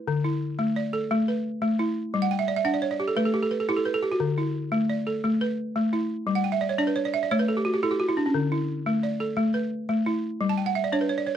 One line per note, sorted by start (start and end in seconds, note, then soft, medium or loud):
0.00 0.25 B4 medium
0.08 0.42 D3 medium
0.24 0.76 E4 medium
0.59 0.93 A3 medium
0.76 1.28 D5 medium
0.93 1.45 A4 medium
1.11 1.45 A3 loud
1.28 1.79 B4 medium
1.62 1.96 A3 medium
1.79 2.31 E4 medium
2.14 2.48 G3 medium
2.22 2.38 F#5 medium
2.31 2.47 G5 medium
2.39 2.55 E5 medium
2.48 2.64 D5 medium
2.56 2.73 E5 medium
2.65 2.99 D4 medium
2.65 2.81 F#5 medium
2.74 2.90 D5 medium
2.82 2.98 C#5 medium
2.91 3.07 D5 medium
3.00 3.16 G4 medium
3.08 3.24 A4 medium
3.17 3.51 A3 medium
3.17 3.33 B4 medium
3.25 3.41 A4 medium
3.34 3.50 G4 medium
3.43 3.59 A4 medium
3.51 3.67 B4 medium
3.60 3.75 A4 medium
3.69 4.03 E4 medium
3.69 3.85 G4 medium
3.77 3.93 A4 medium
3.85 4.02 B4 medium
3.94 4.10 A4 medium
4.02 4.19 G4 medium
4.12 4.28 F#4 medium
4.20 4.54 D3 medium
4.38 4.89 E4 medium
4.72 5.06 A3 medium
4.90 5.41 D5 medium
5.07 5.58 A4 medium
5.24 5.58 A3 medium
5.41 5.93 B4 medium
5.76 6.10 A3 medium
5.93 6.44 E4 medium
6.27 6.61 G3 medium
6.35 6.51 F#5 medium
6.44 6.60 G5 medium
6.52 6.68 E5 medium
6.61 6.77 D5 medium
6.69 6.86 C#5 medium
6.78 7.13 D4 medium
6.78 6.95 D5 medium
6.87 7.03 B4 medium
6.96 7.12 C#5 medium
7.05 7.21 D5 medium
7.14 7.29 E5 medium
7.23 7.38 D5 medium
7.31 7.65 A3 medium
7.31 7.47 C#5 medium
7.39 7.55 B4 medium
7.48 7.64 A4 medium
7.57 7.73 G4 medium
7.65 7.81 F#4 medium
7.74 7.90 G4 medium
7.83 8.07 E4 medium
7.83 7.99 A4 medium
7.91 8.07 G4 medium
8.00 8.16 F#4 medium
8.09 8.24 E4 medium
8.17 8.33 D4 medium
8.26 8.42 C#4 medium
8.34 8.69 D3 medium
8.52 9.03 E4 medium
8.86 9.20 A3 medium
9.03 9.55 D5 medium
9.20 9.72 A4 medium
9.37 9.71 A3 medium
9.54 10.06 B4 medium
9.89 10.23 A3 medium
10.06 10.58 E4 medium
10.41 10.75 G3 medium
10.49 10.65 A5 medium
10.58 10.74 G5 medium
10.66 10.82 F#5 medium
10.75 10.91 E5 medium
10.84 11.00 D5 medium
10.92 11.27 D4 medium
10.92 11.08 C#5 medium
11.01 11.17 B4 medium
11.09 11.26 C#5 medium
11.18 11.34 D5 medium
11.27 11.37 C#5 medium